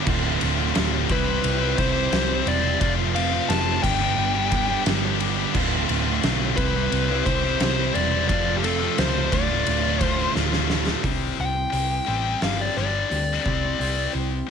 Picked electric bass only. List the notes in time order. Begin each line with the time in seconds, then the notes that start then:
0.07 D1
0.42 D1
0.77 D1
1.10 C2
1.44 C2
1.78 C2
2.12 C2
2.46 E1
2.81 F1
3.49 F1
3.84 G1
4.18 G1
4.86 G1
5.55 D1
5.89 D1
6.24 B1
6.58 C2
6.92 C2
7.27 C2
7.60 C2
7.95 E1
8.29 F1
8.99 C#2
9.33 D1
9.67 D1
10.36 D1
11.04 C2
11.39 C2
11.73 C2
12.08 A1
12.42 G1
12.77 G1
13.11 D2
13.46 C2
13.80 C2
14.15 C2